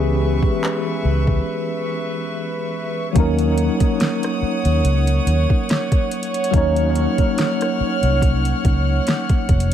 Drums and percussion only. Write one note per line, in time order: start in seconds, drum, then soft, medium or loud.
0.43 kick medium
0.64 clap loud
1.27 kick medium
3.16 kick loud
3.16 closed hi-hat medium
3.39 closed hi-hat soft
3.58 closed hi-hat medium
3.80 kick medium
3.80 closed hi-hat medium
4.00 snare loud
4.00 closed hi-hat medium
4.23 cross-stick medium
4.23 closed hi-hat soft
4.65 closed hi-hat medium
4.85 closed hi-hat medium
5.07 closed hi-hat soft
5.27 closed hi-hat medium
5.50 kick medium
5.69 snare loud
5.69 closed hi-hat medium
5.92 kick loud
5.92 closed hi-hat medium
6.11 closed hi-hat medium
6.23 closed hi-hat medium
6.34 closed hi-hat medium
6.44 closed hi-hat medium
6.54 kick loud
6.54 closed hi-hat medium
6.76 closed hi-hat medium
6.96 closed hi-hat medium
7.18 kick medium
7.18 closed hi-hat medium
7.38 snare loud
7.38 closed hi-hat medium
7.61 cross-stick medium
7.61 closed hi-hat soft
8.03 closed hi-hat medium
8.22 kick medium
8.22 closed hi-hat medium
8.45 closed hi-hat medium
8.65 kick loud
8.65 closed hi-hat medium
9.07 snare loud
9.07 closed hi-hat medium
9.29 kick medium
9.29 closed hi-hat soft
9.49 kick loud
9.49 closed hi-hat medium
9.60 closed hi-hat medium